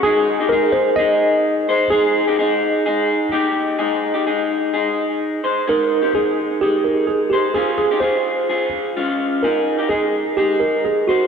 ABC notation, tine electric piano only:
X:1
M:4/4
L:1/8
Q:1/4=128
K:Ab
V:1 name="Tine electric piano"
A2 B c e4 | A6 z2 | z8 | B2 A2 G B A G |
A A c3 z3 | B2 A2 G B A _G |]